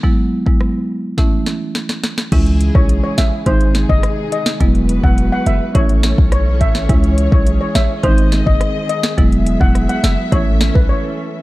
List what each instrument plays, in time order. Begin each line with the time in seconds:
0.03 marimba F#3 G#3 B3 E4, kick
0.46 marimba F#3 G#3 B3 E4, kick
0.61 cross-stick
1.18 marimba E3 A3 C#4 E4, kick, snare
1.46 snare
1.75 snare
1.89 snare
2.04 snare
2.18 snare
2.32 808-style bass C#2, string section C#3 G#3 E4 G#4, marimba E3 G#3 C#4 E4, kick, closed hi-hat, crash
2.46 closed hi-hat
2.61 closed hi-hat
2.75 808-style bass B1, marimba E3 G#3 C#4 E4, steel pan C#5, kick
2.89 closed hi-hat
3.04 steel pan C#5
3.18 808-style bass A1, steel pan E5, snare, closed hi-hat
3.46 808-style bass G#1, string section C3 D#4 G#4, marimba D#3 G#3 C4 D#4, steel pan C5, kick, closed hi-hat
3.61 closed hi-hat
3.75 snare, closed hi-hat
3.89 808-style bass F#1, steel pan D#5, kick
4.03 cross-stick, closed hi-hat
4.32 steel pan D#5, closed hi-hat
4.46 snare
4.60 808-style bass E1, string section E3 F#4 B4, marimba F#3 G#3 B3 E4, kick, closed hi-hat
4.75 closed hi-hat
4.89 closed hi-hat
5.03 808-style bass E1, marimba F#3 G#3 B3 E4, steel pan F#5, kick
5.18 closed hi-hat
5.32 steel pan F#5
5.46 808-style bass F#1, steel pan E5, closed hi-hat
5.75 808-style bass A1, marimba E3 A3 C#4 E4, string section E3 C#4 A4 C#5, steel pan C#5, kick, closed hi-hat
5.89 closed hi-hat
6.03 snare, closed hi-hat
6.18 808-style bass B1, kick
6.32 steel pan C#5, cross-stick, closed hi-hat
6.61 808-style bass A1, steel pan E5, kick, closed hi-hat
6.75 snare
6.89 808-style bass C#2, marimba E3 G#3 C#4 E4, string section G#4, kick, closed hi-hat
7.04 closed hi-hat
7.18 closed hi-hat
7.32 808-style bass B1, marimba E3 G#3 C#4 E4, steel pan C#5, kick
7.47 closed hi-hat
7.61 steel pan C#5
7.75 808-style bass A1, steel pan E5, snare, closed hi-hat
8.03 808-style bass G#1, marimba D#3 G#3 C4 D#4, string section D#3 C4 G#4 D#5, steel pan C5, kick, closed hi-hat
8.18 closed hi-hat
8.32 snare, closed hi-hat
8.46 808-style bass F#1, steel pan D#5, kick
8.61 cross-stick, closed hi-hat
8.89 steel pan D#5, closed hi-hat
9.03 snare
9.18 808-style bass E1, marimba F#3 G#3 B3 E4, string section F#3 B3 E5, kick, closed hi-hat
9.32 closed hi-hat
9.46 closed hi-hat
9.61 808-style bass E1, marimba F#3 G#3 B3 E4, steel pan F#5, kick
9.75 cross-stick, closed hi-hat
9.89 steel pan F#5, closed hi-hat
10.04 808-style bass F#1, steel pan E5, snare, closed hi-hat
10.32 808-style bass A1, marimba E3 A3 C#4 E4, string section E3 C#4 A4, steel pan C#5, kick, closed hi-hat
10.61 snare, closed hi-hat
10.75 808-style bass B1, steel pan B4, kick
10.89 steel pan C#5